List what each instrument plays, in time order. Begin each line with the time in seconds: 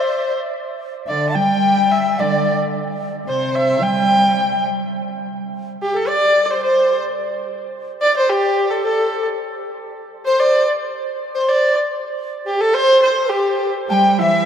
Already playing: dizi C5, erhu C5
1.06 cello D3, erhu D5, dizi E5
1.11 dizi D5
1.29 erhu A5
1.35 cello G3, dizi G5, erhu G5
1.92 erhu E5
2.19 cello D3, dizi D5, erhu D5
3.27 cello C3, dizi C5, erhu C5
3.55 erhu E5
3.81 cello G3, dizi G5, erhu G5
5.82 erhu G4, dizi G4
5.94 dizi A4, erhu A4
6.08 erhu D5, dizi D5
6.45 erhu D5
6.51 dizi C5, erhu C5
6.63 erhu C5, dizi C5
8.01 dizi D5, erhu D5
8.15 dizi C5, erhu C5
8.29 dizi G4, erhu G4
8.70 erhu A4
8.84 erhu A4, dizi A4
10.26 erhu C5, dizi C5
10.40 erhu D5
11.35 dizi C5, erhu C5
11.49 erhu D5
12.46 dizi G4, erhu G4
12.59 dizi A4, erhu A4
12.74 erhu C5, dizi C5
13.02 erhu C5
13.30 erhu G4, dizi G4
13.89 cello G3, erhu G5, dizi A5
13.94 dizi G5
14.10 erhu G5
14.17 cello E3, erhu E5, dizi E5 G5